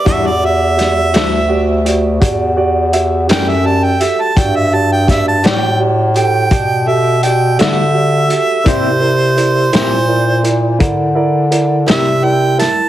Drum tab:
HH |x-xx-xx-xx-x|x-xx-xx-xx-x|x-xx-xx-xx-x|
SD |--oo-----o--|--oo-----o--|---o-----o-o|
BD |o-----o-----|o-o---o-----|o-----o-----|